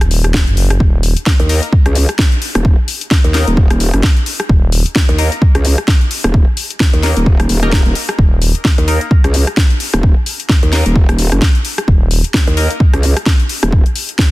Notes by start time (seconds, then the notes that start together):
0.01 D#1, cross-stick, closed hi-hat
0.11 open hi-hat
0.24 cross-stick, closed hi-hat
0.34 kick, snare
0.47 F#1, closed hi-hat
0.57 open hi-hat
0.70 cross-stick, closed hi-hat
0.80 D#1, kick
1.03 open hi-hat
1.17 closed hi-hat
1.26 kick, snare
1.40 D#2, closed hi-hat
1.49 A#3 D#4 A#4, open hi-hat
1.63 closed hi-hat
1.73 kick
1.86 C#2, cross-stick, closed hi-hat
1.95 open hi-hat
2.09 cross-stick, closed hi-hat
2.19 kick, snare
2.32 closed hi-hat
2.42 open hi-hat
2.55 D#1, cross-stick, closed hi-hat
2.65 kick
2.88 open hi-hat
3.01 closed hi-hat
3.11 kick, snare
3.24 D#2, closed hi-hat
3.34 A#3 D#4 A#4, snare, open hi-hat
3.47 D#1, closed hi-hat
3.57 kick
3.70 D#1, cross-stick, closed hi-hat
3.80 open hi-hat
3.94 F#1, cross-stick, closed hi-hat
4.03 kick, snare
4.17 closed hi-hat
4.26 open hi-hat
4.40 cross-stick, closed hi-hat
4.49 D#1, kick
4.72 open hi-hat
4.86 closed hi-hat
4.96 kick, snare
5.09 D#2, closed hi-hat
5.18 A#3 D#4 A#4, open hi-hat
5.32 closed hi-hat
5.42 kick
5.55 C#2, cross-stick, closed hi-hat
5.65 open hi-hat
5.78 cross-stick, closed hi-hat
5.88 kick, snare
6.01 closed hi-hat
6.11 open hi-hat
6.24 D#1, cross-stick, closed hi-hat
6.34 kick
6.57 open hi-hat
6.70 closed hi-hat
6.80 kick, snare
6.93 D#2, closed hi-hat
7.03 A#3 D#4 A#4, snare, open hi-hat
7.17 D#1, closed hi-hat
7.26 kick
7.40 cross-stick, closed hi-hat
7.49 D#1, open hi-hat
7.63 A#3 D#4 A#4, cross-stick, closed hi-hat
7.72 kick, snare
7.86 D#1, closed hi-hat
7.95 open hi-hat
8.09 cross-stick, closed hi-hat
8.19 D#1, kick
8.42 open hi-hat
8.55 closed hi-hat
8.65 kick, snare
8.78 D#2, closed hi-hat
8.88 A#3 D#4 A#4, open hi-hat
9.01 closed hi-hat
9.11 kick
9.24 C#2, cross-stick, closed hi-hat
9.34 open hi-hat
9.47 cross-stick, closed hi-hat
9.57 kick, snare
9.70 closed hi-hat
9.80 open hi-hat
9.94 D#1, cross-stick, closed hi-hat
10.03 kick
10.26 open hi-hat
10.40 closed hi-hat
10.49 kick, snare
10.63 D#2, closed hi-hat
10.72 A#3 D#4 A#4, snare, open hi-hat
10.86 D#1, closed hi-hat
10.96 kick
11.09 D#1, cross-stick, closed hi-hat
11.19 open hi-hat
11.32 F#1, cross-stick, closed hi-hat
11.42 kick, snare
11.55 closed hi-hat
11.65 open hi-hat
11.78 cross-stick, closed hi-hat
11.88 D#1, kick
12.11 open hi-hat
12.24 closed hi-hat
12.34 kick, snare
12.47 D#2, closed hi-hat
12.57 A#3 D#4 A#4, open hi-hat
12.71 closed hi-hat
12.80 kick
12.94 C#2, cross-stick, closed hi-hat
13.03 open hi-hat
13.17 cross-stick, closed hi-hat
13.26 kick, snare
13.40 closed hi-hat
13.49 open hi-hat
13.63 D#1, cross-stick, closed hi-hat
13.72 kick
13.86 closed hi-hat
13.96 open hi-hat
14.09 closed hi-hat
14.19 kick, snare